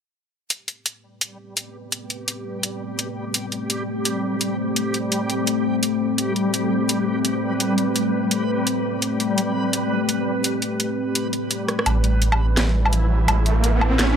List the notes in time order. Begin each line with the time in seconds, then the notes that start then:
0.50 G3 A3 C4 G4 B4, closed hi-hat
0.68 closed hi-hat
0.86 closed hi-hat
1.21 closed hi-hat
1.57 closed hi-hat
1.92 closed hi-hat
2.10 closed hi-hat
2.28 closed hi-hat
2.63 closed hi-hat
2.99 closed hi-hat
3.34 C5, closed hi-hat
3.52 closed hi-hat
3.70 closed hi-hat
4.05 closed hi-hat
4.41 closed hi-hat
4.76 closed hi-hat
4.94 closed hi-hat
5.12 closed hi-hat
5.30 closed hi-hat
5.47 closed hi-hat
5.83 closed hi-hat
6.18 B4, closed hi-hat
6.36 closed hi-hat
6.54 closed hi-hat
6.89 closed hi-hat
7.25 closed hi-hat
7.60 closed hi-hat
7.78 closed hi-hat
7.96 closed hi-hat
8.31 closed hi-hat
8.67 closed hi-hat
9.02 G4, closed hi-hat
9.20 closed hi-hat
9.38 closed hi-hat
9.73 closed hi-hat
10.09 closed hi-hat
10.44 closed hi-hat
10.62 closed hi-hat
10.80 closed hi-hat
11.15 closed hi-hat
11.33 closed hi-hat
11.51 closed hi-hat
11.68 cross-stick, closed hi-hat
11.79 cross-stick
11.86 A1 E3 A3 C4 E4 B4, closed hi-hat, riser, low woodblock
12.04 closed hi-hat
12.22 closed hi-hat
12.32 low woodblock
12.57 A1, snare, closed hi-hat
12.85 low woodblock
12.93 closed hi-hat
13.28 A1, closed hi-hat, low woodblock
13.46 closed hi-hat
13.64 closed hi-hat
13.81 low woodblock
13.99 A1, snare, closed hi-hat